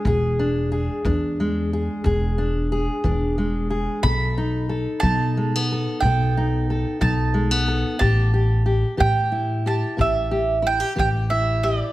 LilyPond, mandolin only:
\new Staff \with { instrumentName = "Mandolin" } { \time 12/8 \key e \mixolydian \tempo 4. = 60 gis''4. r1 r8 | b''4. a''4. g''4. a''4. | a''4. g''4 a''8 e''4 g''8 g''8 e''8 d''8 | }